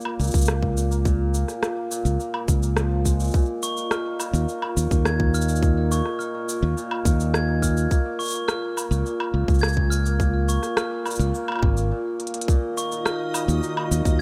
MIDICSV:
0, 0, Header, 1, 7, 480
1, 0, Start_track
1, 0, Key_signature, -5, "major"
1, 0, Tempo, 571429
1, 886, Time_signature, 4, 2, 24, 8
1, 11941, End_track
2, 0, Start_track
2, 0, Title_t, "Glockenspiel"
2, 0, Program_c, 0, 9
2, 3048, Note_on_c, 0, 85, 65
2, 3161, Note_off_c, 0, 85, 0
2, 3290, Note_on_c, 0, 89, 78
2, 3402, Note_off_c, 0, 89, 0
2, 4245, Note_on_c, 0, 92, 71
2, 4359, Note_off_c, 0, 92, 0
2, 4489, Note_on_c, 0, 89, 71
2, 4602, Note_off_c, 0, 89, 0
2, 4969, Note_on_c, 0, 85, 64
2, 5082, Note_off_c, 0, 85, 0
2, 5199, Note_on_c, 0, 89, 77
2, 5317, Note_off_c, 0, 89, 0
2, 6164, Note_on_c, 0, 92, 69
2, 6279, Note_off_c, 0, 92, 0
2, 6404, Note_on_c, 0, 89, 70
2, 6519, Note_off_c, 0, 89, 0
2, 6880, Note_on_c, 0, 85, 70
2, 6997, Note_off_c, 0, 85, 0
2, 7123, Note_on_c, 0, 89, 83
2, 7239, Note_off_c, 0, 89, 0
2, 8076, Note_on_c, 0, 92, 73
2, 8195, Note_off_c, 0, 92, 0
2, 8320, Note_on_c, 0, 89, 74
2, 8437, Note_off_c, 0, 89, 0
2, 8808, Note_on_c, 0, 85, 63
2, 8921, Note_off_c, 0, 85, 0
2, 9046, Note_on_c, 0, 89, 84
2, 9160, Note_off_c, 0, 89, 0
2, 10730, Note_on_c, 0, 85, 68
2, 10842, Note_off_c, 0, 85, 0
2, 10966, Note_on_c, 0, 89, 77
2, 11080, Note_off_c, 0, 89, 0
2, 11941, End_track
3, 0, Start_track
3, 0, Title_t, "Synth texture"
3, 0, Program_c, 1, 99
3, 10482, Note_on_c, 1, 75, 82
3, 10485, Note_on_c, 1, 87, 83
3, 11941, Note_off_c, 1, 75, 0
3, 11941, Note_off_c, 1, 87, 0
3, 11941, End_track
4, 0, Start_track
4, 0, Title_t, "Ambient pad"
4, 0, Program_c, 2, 92
4, 10483, Note_on_c, 2, 51, 89
4, 10577, Note_on_c, 2, 63, 93
4, 10775, Note_on_c, 2, 66, 70
4, 11002, Note_on_c, 2, 70, 79
4, 11941, Note_off_c, 2, 51, 0
4, 11941, Note_off_c, 2, 63, 0
4, 11941, Note_off_c, 2, 66, 0
4, 11941, Note_off_c, 2, 70, 0
4, 11941, End_track
5, 0, Start_track
5, 0, Title_t, "Hammered dulcimer"
5, 0, Program_c, 3, 15
5, 0, Note_on_c, 3, 46, 73
5, 0, Note_on_c, 3, 63, 70
5, 41, Note_on_c, 3, 58, 74
5, 152, Note_off_c, 3, 46, 0
5, 162, Note_on_c, 3, 46, 88
5, 400, Note_off_c, 3, 58, 0
5, 404, Note_on_c, 3, 58, 69
5, 513, Note_off_c, 3, 46, 0
5, 523, Note_on_c, 3, 46, 66
5, 633, Note_off_c, 3, 46, 0
5, 643, Note_on_c, 3, 46, 68
5, 758, Note_off_c, 3, 58, 0
5, 761, Note_on_c, 3, 58, 72
5, 874, Note_off_c, 3, 46, 0
5, 884, Note_on_c, 3, 46, 94
5, 1120, Note_off_c, 3, 58, 0
5, 1124, Note_on_c, 3, 58, 67
5, 1233, Note_off_c, 3, 46, 0
5, 1243, Note_on_c, 3, 46, 75
5, 1353, Note_off_c, 3, 46, 0
5, 1363, Note_on_c, 3, 46, 75
5, 1479, Note_off_c, 3, 58, 0
5, 1482, Note_on_c, 3, 58, 73
5, 1593, Note_off_c, 3, 46, 0
5, 1603, Note_on_c, 3, 46, 97
5, 1633, Note_off_c, 3, 63, 0
5, 1839, Note_off_c, 3, 58, 0
5, 1843, Note_on_c, 3, 58, 76
5, 1954, Note_off_c, 3, 46, 0
5, 1964, Note_on_c, 3, 46, 74
5, 2072, Note_off_c, 3, 46, 0
5, 2083, Note_on_c, 3, 46, 66
5, 2201, Note_off_c, 3, 58, 0
5, 2204, Note_on_c, 3, 58, 66
5, 2325, Note_on_c, 3, 53, 72
5, 2435, Note_off_c, 3, 53, 0
5, 2445, Note_on_c, 3, 53, 69
5, 2567, Note_on_c, 3, 56, 72
5, 2677, Note_off_c, 3, 46, 0
5, 2687, Note_on_c, 3, 46, 76
5, 2795, Note_off_c, 3, 46, 0
5, 2805, Note_on_c, 3, 46, 99
5, 2848, Note_off_c, 3, 53, 0
5, 2848, Note_off_c, 3, 56, 0
5, 3047, Note_on_c, 3, 63, 73
5, 3159, Note_off_c, 3, 46, 0
5, 3169, Note_on_c, 3, 46, 75
5, 3277, Note_off_c, 3, 46, 0
5, 3287, Note_on_c, 3, 46, 76
5, 3405, Note_off_c, 3, 63, 0
5, 3408, Note_on_c, 3, 63, 70
5, 3519, Note_off_c, 3, 46, 0
5, 3529, Note_on_c, 3, 46, 93
5, 3765, Note_off_c, 3, 63, 0
5, 3768, Note_on_c, 3, 63, 75
5, 3877, Note_off_c, 3, 46, 0
5, 3887, Note_on_c, 3, 46, 76
5, 3998, Note_off_c, 3, 46, 0
5, 4008, Note_on_c, 3, 46, 67
5, 4125, Note_off_c, 3, 63, 0
5, 4129, Note_on_c, 3, 63, 67
5, 4237, Note_off_c, 3, 46, 0
5, 4247, Note_on_c, 3, 46, 89
5, 4484, Note_off_c, 3, 63, 0
5, 4488, Note_on_c, 3, 63, 71
5, 4599, Note_off_c, 3, 46, 0
5, 4609, Note_on_c, 3, 46, 71
5, 4720, Note_off_c, 3, 46, 0
5, 4730, Note_on_c, 3, 46, 78
5, 4847, Note_off_c, 3, 63, 0
5, 4850, Note_on_c, 3, 63, 67
5, 4957, Note_off_c, 3, 46, 0
5, 4967, Note_on_c, 3, 46, 98
5, 5204, Note_off_c, 3, 63, 0
5, 5207, Note_on_c, 3, 63, 73
5, 5317, Note_off_c, 3, 46, 0
5, 5327, Note_on_c, 3, 46, 76
5, 5435, Note_off_c, 3, 46, 0
5, 5445, Note_on_c, 3, 46, 70
5, 5564, Note_off_c, 3, 63, 0
5, 5568, Note_on_c, 3, 63, 70
5, 5677, Note_off_c, 3, 46, 0
5, 5687, Note_on_c, 3, 46, 99
5, 5805, Note_off_c, 3, 58, 0
5, 5924, Note_off_c, 3, 63, 0
5, 5928, Note_on_c, 3, 63, 75
5, 6038, Note_off_c, 3, 46, 0
5, 6048, Note_on_c, 3, 46, 75
5, 6157, Note_off_c, 3, 46, 0
5, 6167, Note_on_c, 3, 46, 79
5, 6281, Note_off_c, 3, 63, 0
5, 6285, Note_on_c, 3, 63, 72
5, 6394, Note_off_c, 3, 46, 0
5, 6404, Note_on_c, 3, 46, 93
5, 6644, Note_on_c, 3, 58, 81
5, 6688, Note_off_c, 3, 46, 0
5, 6763, Note_on_c, 3, 46, 69
5, 6877, Note_off_c, 3, 46, 0
5, 6887, Note_on_c, 3, 46, 70
5, 7004, Note_off_c, 3, 58, 0
5, 7008, Note_on_c, 3, 58, 77
5, 7120, Note_off_c, 3, 46, 0
5, 7130, Note_on_c, 3, 46, 89
5, 7364, Note_off_c, 3, 58, 0
5, 7367, Note_on_c, 3, 58, 73
5, 7478, Note_off_c, 3, 46, 0
5, 7489, Note_on_c, 3, 46, 77
5, 7598, Note_off_c, 3, 46, 0
5, 7608, Note_on_c, 3, 46, 75
5, 7727, Note_off_c, 3, 58, 0
5, 7731, Note_on_c, 3, 58, 77
5, 7837, Note_off_c, 3, 46, 0
5, 7847, Note_on_c, 3, 46, 86
5, 8084, Note_off_c, 3, 58, 0
5, 8088, Note_on_c, 3, 58, 78
5, 8197, Note_off_c, 3, 46, 0
5, 8207, Note_on_c, 3, 46, 67
5, 8318, Note_off_c, 3, 46, 0
5, 8328, Note_on_c, 3, 46, 78
5, 8445, Note_off_c, 3, 58, 0
5, 8448, Note_on_c, 3, 58, 79
5, 8559, Note_off_c, 3, 46, 0
5, 8569, Note_on_c, 3, 46, 94
5, 8804, Note_off_c, 3, 58, 0
5, 8807, Note_on_c, 3, 58, 73
5, 8920, Note_off_c, 3, 46, 0
5, 8930, Note_on_c, 3, 46, 76
5, 9038, Note_off_c, 3, 46, 0
5, 9048, Note_on_c, 3, 46, 80
5, 9163, Note_off_c, 3, 58, 0
5, 9166, Note_on_c, 3, 58, 74
5, 9277, Note_off_c, 3, 46, 0
5, 9287, Note_on_c, 3, 46, 102
5, 9313, Note_off_c, 3, 63, 0
5, 9527, Note_off_c, 3, 58, 0
5, 9530, Note_on_c, 3, 58, 83
5, 9639, Note_off_c, 3, 46, 0
5, 9649, Note_on_c, 3, 46, 79
5, 9756, Note_off_c, 3, 46, 0
5, 9766, Note_on_c, 3, 46, 69
5, 9883, Note_off_c, 3, 58, 0
5, 9887, Note_on_c, 3, 58, 69
5, 9997, Note_off_c, 3, 46, 0
5, 10007, Note_on_c, 3, 46, 92
5, 10244, Note_off_c, 3, 58, 0
5, 10247, Note_on_c, 3, 58, 74
5, 10355, Note_off_c, 3, 46, 0
5, 10366, Note_on_c, 3, 46, 77
5, 10477, Note_off_c, 3, 46, 0
5, 10487, Note_on_c, 3, 46, 100
5, 10728, Note_on_c, 3, 63, 74
5, 10838, Note_off_c, 3, 46, 0
5, 10848, Note_on_c, 3, 46, 86
5, 10956, Note_off_c, 3, 46, 0
5, 10966, Note_on_c, 3, 46, 83
5, 11083, Note_off_c, 3, 63, 0
5, 11086, Note_on_c, 3, 63, 81
5, 11194, Note_off_c, 3, 46, 0
5, 11204, Note_on_c, 3, 46, 98
5, 11442, Note_off_c, 3, 63, 0
5, 11445, Note_on_c, 3, 63, 80
5, 11554, Note_off_c, 3, 46, 0
5, 11564, Note_on_c, 3, 46, 80
5, 11678, Note_off_c, 3, 46, 0
5, 11688, Note_on_c, 3, 46, 72
5, 11802, Note_off_c, 3, 63, 0
5, 11806, Note_on_c, 3, 63, 73
5, 11916, Note_off_c, 3, 46, 0
5, 11941, Note_off_c, 3, 58, 0
5, 11941, Note_off_c, 3, 63, 0
5, 11941, End_track
6, 0, Start_track
6, 0, Title_t, "Fingered electric bass"
6, 0, Program_c, 4, 33
6, 164, Note_on_c, 4, 37, 85
6, 258, Note_off_c, 4, 37, 0
6, 285, Note_on_c, 4, 37, 76
6, 1202, Note_off_c, 4, 37, 0
6, 1722, Note_on_c, 4, 37, 90
6, 1817, Note_off_c, 4, 37, 0
6, 2085, Note_on_c, 4, 37, 76
6, 2762, Note_off_c, 4, 37, 0
6, 3641, Note_on_c, 4, 39, 93
6, 3736, Note_off_c, 4, 39, 0
6, 4004, Note_on_c, 4, 39, 87
6, 4098, Note_off_c, 4, 39, 0
6, 4123, Note_on_c, 4, 39, 85
6, 5042, Note_off_c, 4, 39, 0
6, 5565, Note_on_c, 4, 39, 97
6, 5659, Note_off_c, 4, 39, 0
6, 5924, Note_on_c, 4, 39, 82
6, 6602, Note_off_c, 4, 39, 0
6, 7483, Note_on_c, 4, 37, 93
6, 7577, Note_off_c, 4, 37, 0
6, 7843, Note_on_c, 4, 37, 81
6, 7938, Note_off_c, 4, 37, 0
6, 7963, Note_on_c, 4, 37, 81
6, 8881, Note_off_c, 4, 37, 0
6, 9403, Note_on_c, 4, 37, 97
6, 9498, Note_off_c, 4, 37, 0
6, 9764, Note_on_c, 4, 32, 85
6, 10005, Note_off_c, 4, 32, 0
6, 11325, Note_on_c, 4, 39, 93
6, 11419, Note_off_c, 4, 39, 0
6, 11686, Note_on_c, 4, 39, 87
6, 11779, Note_off_c, 4, 39, 0
6, 11803, Note_on_c, 4, 39, 81
6, 11941, Note_off_c, 4, 39, 0
6, 11941, End_track
7, 0, Start_track
7, 0, Title_t, "Drums"
7, 7, Note_on_c, 9, 69, 24
7, 44, Note_on_c, 9, 77, 72
7, 91, Note_off_c, 9, 69, 0
7, 128, Note_off_c, 9, 77, 0
7, 169, Note_on_c, 9, 69, 33
7, 198, Note_off_c, 9, 69, 0
7, 198, Note_on_c, 9, 69, 36
7, 228, Note_off_c, 9, 69, 0
7, 228, Note_on_c, 9, 69, 41
7, 259, Note_off_c, 9, 69, 0
7, 259, Note_on_c, 9, 69, 46
7, 286, Note_on_c, 9, 36, 99
7, 289, Note_off_c, 9, 69, 0
7, 289, Note_on_c, 9, 69, 56
7, 318, Note_off_c, 9, 69, 0
7, 318, Note_on_c, 9, 69, 52
7, 347, Note_off_c, 9, 69, 0
7, 347, Note_on_c, 9, 69, 59
7, 370, Note_off_c, 9, 36, 0
7, 379, Note_off_c, 9, 69, 0
7, 379, Note_on_c, 9, 69, 66
7, 406, Note_on_c, 9, 37, 92
7, 409, Note_off_c, 9, 69, 0
7, 409, Note_on_c, 9, 69, 30
7, 490, Note_off_c, 9, 37, 0
7, 493, Note_off_c, 9, 69, 0
7, 525, Note_on_c, 9, 36, 89
7, 609, Note_off_c, 9, 36, 0
7, 649, Note_on_c, 9, 69, 73
7, 733, Note_off_c, 9, 69, 0
7, 769, Note_on_c, 9, 69, 43
7, 853, Note_off_c, 9, 69, 0
7, 885, Note_on_c, 9, 36, 114
7, 889, Note_on_c, 9, 69, 34
7, 969, Note_off_c, 9, 36, 0
7, 973, Note_off_c, 9, 69, 0
7, 1128, Note_on_c, 9, 69, 73
7, 1212, Note_off_c, 9, 69, 0
7, 1246, Note_on_c, 9, 37, 28
7, 1250, Note_on_c, 9, 69, 42
7, 1330, Note_off_c, 9, 37, 0
7, 1334, Note_off_c, 9, 69, 0
7, 1366, Note_on_c, 9, 37, 89
7, 1370, Note_on_c, 9, 69, 30
7, 1450, Note_off_c, 9, 37, 0
7, 1454, Note_off_c, 9, 69, 0
7, 1608, Note_on_c, 9, 69, 79
7, 1692, Note_off_c, 9, 69, 0
7, 1728, Note_on_c, 9, 69, 42
7, 1812, Note_off_c, 9, 69, 0
7, 1848, Note_on_c, 9, 69, 31
7, 1932, Note_off_c, 9, 69, 0
7, 1965, Note_on_c, 9, 77, 70
7, 2049, Note_off_c, 9, 77, 0
7, 2085, Note_on_c, 9, 36, 96
7, 2087, Note_on_c, 9, 69, 70
7, 2169, Note_off_c, 9, 36, 0
7, 2171, Note_off_c, 9, 69, 0
7, 2208, Note_on_c, 9, 69, 43
7, 2292, Note_off_c, 9, 69, 0
7, 2323, Note_on_c, 9, 37, 88
7, 2327, Note_on_c, 9, 69, 32
7, 2407, Note_off_c, 9, 37, 0
7, 2411, Note_off_c, 9, 69, 0
7, 2565, Note_on_c, 9, 36, 59
7, 2567, Note_on_c, 9, 69, 72
7, 2649, Note_off_c, 9, 36, 0
7, 2651, Note_off_c, 9, 69, 0
7, 2688, Note_on_c, 9, 69, 42
7, 2720, Note_off_c, 9, 69, 0
7, 2720, Note_on_c, 9, 69, 33
7, 2751, Note_off_c, 9, 69, 0
7, 2751, Note_on_c, 9, 69, 27
7, 2780, Note_off_c, 9, 69, 0
7, 2780, Note_on_c, 9, 69, 23
7, 2806, Note_on_c, 9, 36, 118
7, 2809, Note_off_c, 9, 69, 0
7, 2809, Note_on_c, 9, 69, 32
7, 2840, Note_off_c, 9, 69, 0
7, 2840, Note_on_c, 9, 69, 16
7, 2870, Note_off_c, 9, 69, 0
7, 2870, Note_on_c, 9, 69, 13
7, 2890, Note_off_c, 9, 36, 0
7, 2900, Note_off_c, 9, 69, 0
7, 2900, Note_on_c, 9, 69, 11
7, 2984, Note_off_c, 9, 69, 0
7, 3048, Note_on_c, 9, 69, 76
7, 3132, Note_off_c, 9, 69, 0
7, 3167, Note_on_c, 9, 69, 41
7, 3251, Note_off_c, 9, 69, 0
7, 3284, Note_on_c, 9, 37, 85
7, 3288, Note_on_c, 9, 69, 29
7, 3368, Note_off_c, 9, 37, 0
7, 3372, Note_off_c, 9, 69, 0
7, 3525, Note_on_c, 9, 77, 54
7, 3528, Note_on_c, 9, 69, 75
7, 3609, Note_off_c, 9, 77, 0
7, 3612, Note_off_c, 9, 69, 0
7, 3648, Note_on_c, 9, 69, 43
7, 3732, Note_off_c, 9, 69, 0
7, 3768, Note_on_c, 9, 69, 32
7, 3852, Note_off_c, 9, 69, 0
7, 3883, Note_on_c, 9, 77, 72
7, 3967, Note_off_c, 9, 77, 0
7, 4009, Note_on_c, 9, 69, 74
7, 4093, Note_off_c, 9, 69, 0
7, 4126, Note_on_c, 9, 36, 98
7, 4129, Note_on_c, 9, 69, 41
7, 4210, Note_off_c, 9, 36, 0
7, 4213, Note_off_c, 9, 69, 0
7, 4245, Note_on_c, 9, 37, 83
7, 4249, Note_on_c, 9, 69, 29
7, 4329, Note_off_c, 9, 37, 0
7, 4333, Note_off_c, 9, 69, 0
7, 4366, Note_on_c, 9, 36, 96
7, 4450, Note_off_c, 9, 36, 0
7, 4489, Note_on_c, 9, 69, 69
7, 4548, Note_off_c, 9, 69, 0
7, 4548, Note_on_c, 9, 69, 56
7, 4608, Note_off_c, 9, 69, 0
7, 4608, Note_on_c, 9, 69, 48
7, 4667, Note_off_c, 9, 69, 0
7, 4667, Note_on_c, 9, 69, 40
7, 4726, Note_on_c, 9, 36, 102
7, 4729, Note_off_c, 9, 69, 0
7, 4729, Note_on_c, 9, 69, 30
7, 4810, Note_off_c, 9, 36, 0
7, 4813, Note_off_c, 9, 69, 0
7, 4971, Note_on_c, 9, 69, 68
7, 5055, Note_off_c, 9, 69, 0
7, 5086, Note_on_c, 9, 37, 28
7, 5170, Note_off_c, 9, 37, 0
7, 5212, Note_on_c, 9, 69, 29
7, 5296, Note_off_c, 9, 69, 0
7, 5451, Note_on_c, 9, 69, 69
7, 5535, Note_off_c, 9, 69, 0
7, 5692, Note_on_c, 9, 69, 41
7, 5776, Note_off_c, 9, 69, 0
7, 5806, Note_on_c, 9, 77, 72
7, 5890, Note_off_c, 9, 77, 0
7, 5925, Note_on_c, 9, 36, 98
7, 5930, Note_on_c, 9, 69, 68
7, 6009, Note_off_c, 9, 36, 0
7, 6014, Note_off_c, 9, 69, 0
7, 6051, Note_on_c, 9, 69, 38
7, 6135, Note_off_c, 9, 69, 0
7, 6167, Note_on_c, 9, 37, 82
7, 6171, Note_on_c, 9, 69, 30
7, 6251, Note_off_c, 9, 37, 0
7, 6255, Note_off_c, 9, 69, 0
7, 6404, Note_on_c, 9, 36, 54
7, 6410, Note_on_c, 9, 69, 74
7, 6488, Note_off_c, 9, 36, 0
7, 6494, Note_off_c, 9, 69, 0
7, 6529, Note_on_c, 9, 69, 43
7, 6613, Note_off_c, 9, 69, 0
7, 6645, Note_on_c, 9, 36, 107
7, 6648, Note_on_c, 9, 69, 33
7, 6729, Note_off_c, 9, 36, 0
7, 6732, Note_off_c, 9, 69, 0
7, 6889, Note_on_c, 9, 69, 31
7, 6910, Note_off_c, 9, 69, 0
7, 6910, Note_on_c, 9, 69, 37
7, 6931, Note_off_c, 9, 69, 0
7, 6931, Note_on_c, 9, 69, 44
7, 6952, Note_off_c, 9, 69, 0
7, 6952, Note_on_c, 9, 69, 50
7, 6971, Note_off_c, 9, 69, 0
7, 6971, Note_on_c, 9, 69, 52
7, 6989, Note_off_c, 9, 69, 0
7, 6989, Note_on_c, 9, 69, 56
7, 7010, Note_off_c, 9, 69, 0
7, 7010, Note_on_c, 9, 69, 38
7, 7094, Note_off_c, 9, 69, 0
7, 7127, Note_on_c, 9, 37, 86
7, 7131, Note_on_c, 9, 69, 31
7, 7211, Note_off_c, 9, 37, 0
7, 7215, Note_off_c, 9, 69, 0
7, 7369, Note_on_c, 9, 77, 59
7, 7372, Note_on_c, 9, 69, 73
7, 7453, Note_off_c, 9, 77, 0
7, 7456, Note_off_c, 9, 69, 0
7, 7491, Note_on_c, 9, 69, 41
7, 7575, Note_off_c, 9, 69, 0
7, 7612, Note_on_c, 9, 69, 29
7, 7696, Note_off_c, 9, 69, 0
7, 7729, Note_on_c, 9, 77, 77
7, 7813, Note_off_c, 9, 77, 0
7, 7965, Note_on_c, 9, 36, 93
7, 7973, Note_on_c, 9, 69, 17
7, 8014, Note_off_c, 9, 69, 0
7, 8014, Note_on_c, 9, 69, 22
7, 8049, Note_off_c, 9, 36, 0
7, 8054, Note_off_c, 9, 69, 0
7, 8054, Note_on_c, 9, 69, 24
7, 8090, Note_on_c, 9, 37, 87
7, 8094, Note_off_c, 9, 69, 0
7, 8094, Note_on_c, 9, 69, 27
7, 8132, Note_off_c, 9, 69, 0
7, 8132, Note_on_c, 9, 69, 30
7, 8171, Note_off_c, 9, 69, 0
7, 8171, Note_on_c, 9, 69, 31
7, 8174, Note_off_c, 9, 37, 0
7, 8205, Note_on_c, 9, 36, 95
7, 8255, Note_off_c, 9, 69, 0
7, 8289, Note_off_c, 9, 36, 0
7, 8331, Note_on_c, 9, 69, 72
7, 8415, Note_off_c, 9, 69, 0
7, 8450, Note_on_c, 9, 69, 41
7, 8534, Note_off_c, 9, 69, 0
7, 8566, Note_on_c, 9, 36, 106
7, 8570, Note_on_c, 9, 69, 32
7, 8650, Note_off_c, 9, 36, 0
7, 8654, Note_off_c, 9, 69, 0
7, 8810, Note_on_c, 9, 69, 69
7, 8894, Note_off_c, 9, 69, 0
7, 8927, Note_on_c, 9, 37, 31
7, 8931, Note_on_c, 9, 69, 39
7, 9011, Note_off_c, 9, 37, 0
7, 9015, Note_off_c, 9, 69, 0
7, 9046, Note_on_c, 9, 37, 100
7, 9050, Note_on_c, 9, 69, 30
7, 9130, Note_off_c, 9, 37, 0
7, 9134, Note_off_c, 9, 69, 0
7, 9287, Note_on_c, 9, 77, 62
7, 9290, Note_on_c, 9, 69, 34
7, 9329, Note_off_c, 9, 69, 0
7, 9329, Note_on_c, 9, 69, 46
7, 9370, Note_off_c, 9, 69, 0
7, 9370, Note_on_c, 9, 69, 54
7, 9371, Note_off_c, 9, 77, 0
7, 9409, Note_off_c, 9, 69, 0
7, 9409, Note_on_c, 9, 69, 40
7, 9493, Note_off_c, 9, 69, 0
7, 9530, Note_on_c, 9, 69, 30
7, 9614, Note_off_c, 9, 69, 0
7, 9645, Note_on_c, 9, 77, 74
7, 9677, Note_off_c, 9, 77, 0
7, 9677, Note_on_c, 9, 77, 64
7, 9707, Note_off_c, 9, 77, 0
7, 9707, Note_on_c, 9, 77, 52
7, 9735, Note_off_c, 9, 77, 0
7, 9735, Note_on_c, 9, 77, 40
7, 9765, Note_on_c, 9, 36, 105
7, 9819, Note_off_c, 9, 77, 0
7, 9849, Note_off_c, 9, 36, 0
7, 9888, Note_on_c, 9, 69, 39
7, 9972, Note_off_c, 9, 69, 0
7, 10246, Note_on_c, 9, 42, 50
7, 10307, Note_off_c, 9, 42, 0
7, 10307, Note_on_c, 9, 42, 58
7, 10366, Note_off_c, 9, 42, 0
7, 10366, Note_on_c, 9, 42, 69
7, 10428, Note_off_c, 9, 42, 0
7, 10428, Note_on_c, 9, 42, 85
7, 10485, Note_on_c, 9, 36, 111
7, 10492, Note_on_c, 9, 69, 35
7, 10512, Note_off_c, 9, 42, 0
7, 10569, Note_off_c, 9, 36, 0
7, 10576, Note_off_c, 9, 69, 0
7, 10732, Note_on_c, 9, 69, 75
7, 10816, Note_off_c, 9, 69, 0
7, 10852, Note_on_c, 9, 69, 42
7, 10936, Note_off_c, 9, 69, 0
7, 10968, Note_on_c, 9, 37, 77
7, 10972, Note_on_c, 9, 69, 32
7, 11052, Note_off_c, 9, 37, 0
7, 11056, Note_off_c, 9, 69, 0
7, 11207, Note_on_c, 9, 77, 67
7, 11211, Note_on_c, 9, 69, 75
7, 11291, Note_off_c, 9, 77, 0
7, 11295, Note_off_c, 9, 69, 0
7, 11331, Note_on_c, 9, 69, 43
7, 11415, Note_off_c, 9, 69, 0
7, 11451, Note_on_c, 9, 69, 32
7, 11535, Note_off_c, 9, 69, 0
7, 11568, Note_on_c, 9, 77, 78
7, 11652, Note_off_c, 9, 77, 0
7, 11691, Note_on_c, 9, 69, 81
7, 11775, Note_off_c, 9, 69, 0
7, 11805, Note_on_c, 9, 36, 98
7, 11810, Note_on_c, 9, 69, 43
7, 11889, Note_off_c, 9, 36, 0
7, 11894, Note_off_c, 9, 69, 0
7, 11941, End_track
0, 0, End_of_file